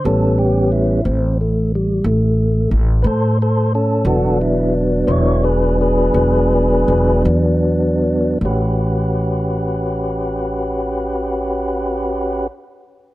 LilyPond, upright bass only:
\new Staff \with { instrumentName = "Upright bass" } { \clef bass \time 12/8 \key a \mixolydian \tempo 4. = 56 a,,4. a,,4. a,,4 a,,8 a,4. | e,,4. e,,4. e,,4 e,,8 e,4. | a,,1. | }